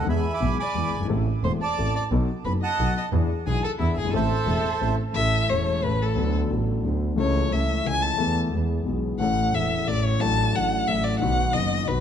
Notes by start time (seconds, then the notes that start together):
0.03 D#2 E2 E3 G#3 B3 G#4
0.08 E2 E5 G#5 B5
0.34 G#5 B5 D6
0.40 B1 B2 E3 G#3 B3 G#4
0.59 D5 G#5 B5 D6
0.75 E2 E3 G#3 B3 G#4
0.93 F#1 G1
1.01 G1
1.05 G#1 A1
1.09 A1 A2 E3 A3 C4 A4
1.44 E1 E2 E3 A3 C4 A4 C5 C6
1.61 D5 A5 D6
1.77 A1 A2 E3 A3 C4 A4
1.95 D5 D6
2.12 B1 B2 F#3 B3 D#4 A4
2.45 F#1 F#2 F#3 B3 D#4 A4 B4 B5
2.62 D#5 F#5 A5 D#6
2.79 B1 B2 F#3 B3 D#4 A4
2.98 D#5 D#6
3.12 E2 E3 B3 D4 G#4
3.46 B1 B2 E3 B3 D4 G#4 G#5
3.63 A4 A5
3.79 E2 E3 B3 D4 E4 G#4 E5
3.96 G1 G#4 G#5
4.00 F#1 G1
4.09 G#1 E3
4.13 A1 A2 A3 C4 A4 C5 E5 A5
4.46 E1 E2 E3 A3 C4 A4
4.81 A1 A2 E3 A3 C4 A4
5.13 A1 A2 E3 A3 C#4 E5
5.18 A4
5.48 E1 E2 E3 A3 C#4 A4 C#5
5.82 A1 A2 E3 A3 C#4 A4 B4
6.02 A4
6.14 D2 D3 F#3 B3 D4 A4
6.49 A1 A2 F#3 B3 D4 A4
6.82 D2 D3 F#3 B3 D4
6.86 A4
7.15 C#2 C#3 E3 A3 C#4
7.19 A4 C#5
7.49 C#2 C#3 E3 A3 C#4
7.53 A4 E5
7.83 C#2 C#3 E3 A3 C#4 G#5
7.87 A4
8.02 A5
8.16 E2 E3 A3 B3
8.21 A4
8.49 E2 E3 G#3 B3
8.54 G#4
8.83 B1 B2 E3 G#3 B3
8.87 G#4
9.18 A1 A2 E3 A3 C#4 F#5
9.22 A4
9.51 E1 E2 E3 A3 E5
9.56 A4
9.85 A1 A2 E3 A3 C#4 D5
9.89 A4
10.05 C#5
10.18 A1 A2 F#3 A3 D4 A4 A5
10.53 A1 A2 F#3 A3 D4 F#5
10.57 A4
10.86 A1 A2 F#3 A3 D4 E5
10.90 A4
11.04 D5
11.19 B1 B2 D#3 F#3 B3 F#5
11.23 F#4
11.52 F#1 F#2 D#3 F#3 B3 F#4 D#5
11.85 B1 B2 D#3 F#3 B3 B4
11.90 F#4